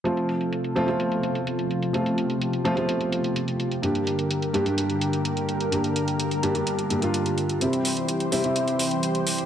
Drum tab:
HH |xxxxxxxxxxxxxxxx|xxxxxxxxxxxxxxxx|xxxxxxxxxxxxxxxx|xxxxxxxxxxxxxxxx|

HH |xxoxxxoxxxoxxxox|